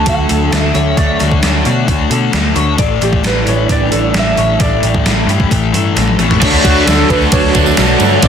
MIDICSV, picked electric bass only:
0, 0, Header, 1, 2, 480
1, 0, Start_track
1, 0, Key_signature, 2, "major"
1, 0, Tempo, 454201
1, 1024, Time_signature, 4, 2, 24, 8
1, 8750, End_track
2, 0, Start_track
2, 0, Title_t, "Picked electric bass"
2, 0, Program_c, 0, 34
2, 68, Note_on_c, 0, 38, 85
2, 260, Note_off_c, 0, 38, 0
2, 324, Note_on_c, 0, 38, 85
2, 509, Note_off_c, 0, 38, 0
2, 558, Note_on_c, 0, 38, 85
2, 746, Note_off_c, 0, 38, 0
2, 794, Note_on_c, 0, 38, 82
2, 983, Note_off_c, 0, 38, 0
2, 1033, Note_on_c, 0, 38, 88
2, 1223, Note_off_c, 0, 38, 0
2, 1281, Note_on_c, 0, 38, 78
2, 1468, Note_off_c, 0, 38, 0
2, 1518, Note_on_c, 0, 38, 95
2, 1706, Note_off_c, 0, 38, 0
2, 1755, Note_on_c, 0, 47, 87
2, 1944, Note_off_c, 0, 47, 0
2, 1986, Note_on_c, 0, 38, 78
2, 2179, Note_off_c, 0, 38, 0
2, 2223, Note_on_c, 0, 47, 84
2, 2417, Note_off_c, 0, 47, 0
2, 2466, Note_on_c, 0, 38, 82
2, 2660, Note_off_c, 0, 38, 0
2, 2702, Note_on_c, 0, 38, 86
2, 2897, Note_off_c, 0, 38, 0
2, 2947, Note_on_c, 0, 33, 80
2, 3140, Note_off_c, 0, 33, 0
2, 3182, Note_on_c, 0, 33, 87
2, 3377, Note_off_c, 0, 33, 0
2, 3431, Note_on_c, 0, 33, 87
2, 3623, Note_off_c, 0, 33, 0
2, 3662, Note_on_c, 0, 33, 78
2, 3858, Note_off_c, 0, 33, 0
2, 3903, Note_on_c, 0, 33, 78
2, 4099, Note_off_c, 0, 33, 0
2, 4145, Note_on_c, 0, 33, 80
2, 4340, Note_off_c, 0, 33, 0
2, 4376, Note_on_c, 0, 33, 75
2, 4575, Note_off_c, 0, 33, 0
2, 4625, Note_on_c, 0, 33, 88
2, 4820, Note_off_c, 0, 33, 0
2, 4866, Note_on_c, 0, 33, 88
2, 5061, Note_off_c, 0, 33, 0
2, 5108, Note_on_c, 0, 33, 88
2, 5303, Note_off_c, 0, 33, 0
2, 5338, Note_on_c, 0, 33, 95
2, 5536, Note_off_c, 0, 33, 0
2, 5570, Note_on_c, 0, 43, 89
2, 5772, Note_off_c, 0, 43, 0
2, 5828, Note_on_c, 0, 33, 81
2, 6022, Note_off_c, 0, 33, 0
2, 6058, Note_on_c, 0, 43, 79
2, 6257, Note_off_c, 0, 43, 0
2, 6302, Note_on_c, 0, 33, 75
2, 6499, Note_off_c, 0, 33, 0
2, 6534, Note_on_c, 0, 33, 74
2, 6734, Note_off_c, 0, 33, 0
2, 6781, Note_on_c, 0, 38, 98
2, 6953, Note_off_c, 0, 38, 0
2, 7026, Note_on_c, 0, 38, 94
2, 7196, Note_off_c, 0, 38, 0
2, 7259, Note_on_c, 0, 38, 101
2, 7431, Note_off_c, 0, 38, 0
2, 7501, Note_on_c, 0, 38, 100
2, 7672, Note_off_c, 0, 38, 0
2, 7739, Note_on_c, 0, 38, 100
2, 7910, Note_off_c, 0, 38, 0
2, 7979, Note_on_c, 0, 38, 88
2, 8150, Note_off_c, 0, 38, 0
2, 8228, Note_on_c, 0, 35, 86
2, 8395, Note_off_c, 0, 35, 0
2, 8459, Note_on_c, 0, 43, 93
2, 8629, Note_off_c, 0, 43, 0
2, 8698, Note_on_c, 0, 38, 95
2, 8750, Note_off_c, 0, 38, 0
2, 8750, End_track
0, 0, End_of_file